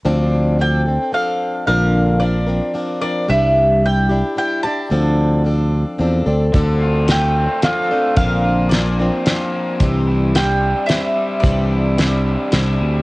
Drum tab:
HH |------|------|------|------|
SD |------|------|------|------|
BD |------|------|------|------|

HH |x-x-x-|x-x-x-|x-x-x-|x-x-x-|
SD |--o-o-|--o-o-|--o-o-|--o-o-|
BD |o-----|o-----|o-----|o-----|